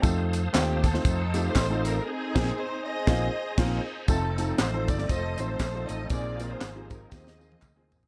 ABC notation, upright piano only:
X:1
M:4/4
L:1/16
Q:"Swing" 1/4=118
K:Fdor
V:1 name="Upright piano"
[=A,CEF=A]3 z [A,CEFc]2 z [A,CEFc]2 z [A,CEFG]2 z [A,CEFA]2 z | z2 [B,,B,CEFA]2 z4 [B,CEFA]2 z2 [B,CEFB]2 z2 | [=A,CEF=A] z [A,CEFA]2 z [A,CEFA]2 z [A,CEFc] z [A,CEFc]2 z [A,CEFc]2 z | [B,CEFA] z [B,CEFB]2 z [B,CEFG]2 z [B,CEFG] z [B,CEFA]2 z [B,CEFA]2 z |]
V:2 name="Upright piano" clef=bass
z16 | z16 | z16 | B,,6 z8 z2 |]